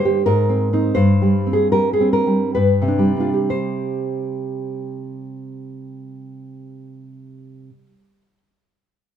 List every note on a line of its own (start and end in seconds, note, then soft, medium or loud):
0.00 0.23 G2 medium
0.00 0.16 D3 soft
0.00 0.27 G3 soft
0.00 0.25 C5 medium
0.05 0.27 G4 medium
0.26 0.94 G#2 medium
0.26 0.93 A#4 medium
0.49 0.72 C4 soft
0.73 0.94 C4 soft
0.73 0.95 D#4 soft
0.95 2.53 G2 medium
0.95 1.50 C5 medium
1.22 1.72 G3 soft
1.47 1.99 C4 soft
1.53 1.71 G#4 medium
1.72 2.26 G3 soft
1.72 1.92 A#4 medium
1.93 2.12 G#4 medium
2.01 2.57 C4 soft
2.13 2.54 A#4 medium
2.27 2.56 G3 soft
2.55 3.48 G2 medium
2.55 3.47 B4 medium
2.82 7.69 C3 soft
2.88 3.16 D4 soft
2.99 7.86 G3 soft
3.16 3.48 D4 soft
3.16 3.20 D#4 soft
3.16 3.33 F4 soft
3.34 8.21 G4 soft
3.50 8.38 C5 soft